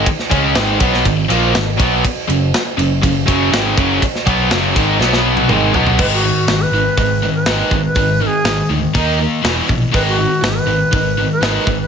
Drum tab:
CC |----------------|----------------|----------------|x---------------|
RD |x-x-x-x-x-x-x-x-|x-x-x-x-x-x-x-x-|x-x-x-x---------|----------------|
HH |----------------|----------------|----------------|----o---o---o---|
SD |-o--o--o----o---|----o-------o---|-o--o---oo------|----o-------o---|
T1 |----------------|----------------|-----------o----|----------------|
T2 |----------------|----------------|------------o---|----------------|
FT |----------------|----------------|--------------oo|----------------|
BD |o-o---o-o-----o-|o-------o-o---o-|o-o---o---------|o-------o-----o-|

CC |----------------|----------------|
RD |----------------|----------------|
HH |o---o---o---o---|o---o---o---o---|
SD |----o-------o---|----o-------o---|
T1 |----------------|----------------|
T2 |----------------|----------------|
FT |----------------|----------------|
BD |o-------o-----o-|o-------o-----o-|